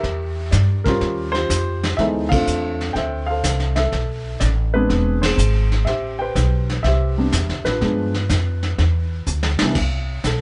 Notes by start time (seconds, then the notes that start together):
Already playing: G4 A#4 E5
0.03 E2, brush sweep, kick, snare
0.51 G2 D5, kick, snare, hi-hat pedal
0.84 G3 C#4 F4 G4 A#4 C5, kick, snare
1.01 D#2, brush sweep, kick, snare
1.32 F4 G4 C5, snare
1.50 F2, kick, snare, hi-hat pedal
1.83 snare
1.97 D2 E3 G#3 B3 D#4 A4 C5 E5, brush sweep, kick, snare
2.29 A3 C4 F4 A4 F5, kick, crash
2.33 D4 C5
2.47 E2, hi-hat pedal
2.81 snare
2.93 D2 C5 E5 G5, brush sweep, kick, snare
3.26 C5 F5
3.30 A4
3.44 C2, kick, snare, hi-hat pedal
3.60 snare
3.76 A4 E5, snare
3.92 B1, brush sweep, kick, snare
4.40 A1 D5, kick, snare, hi-hat pedal
4.74 G#3 B3 C4 D4 G#4 B4
4.89 E1, brush sweep, kick, snare
5.22 G#4 C5, snare, ride
5.38 G#1, hi-hat pedal
5.72 snare
5.85 A1 G4 C5 E5, brush sweep, kick, snare
6.19 B4 C5 G5
6.35 B1, kick, snare, hi-hat pedal
6.70 snare
6.83 C2 G4 C5 E5, brush sweep, kick, snare
7.18 G3 B3 C4 D4
7.32 E2, kick, snare, hi-hat pedal
7.48 C2, snare
7.64 A1 D4 F4 B4, snare
7.81 G2 F3 G#3 B3 D4, brush sweep, kick, snare
8.14 snare
8.29 F2, kick, snare, hi-hat pedal
8.63 snare
8.78 E2, brush sweep, kick, snare
9.27 D2, hi-hat pedal
9.43 snare
9.59 C2 E3 G3 B3 D4, muted upright bass stroke, snare
9.75 C2, brush sweep, kick, snare, crash
10.24 B1 A4, kick, snare, hi-hat pedal